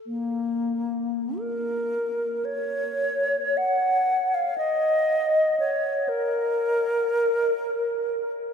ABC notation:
X:1
M:4/4
L:1/16
Q:1/4=59
K:Bbm
V:1 name="Alto flute"
B,4 B4 d4 g3 f | e4 d2 B8- B z |]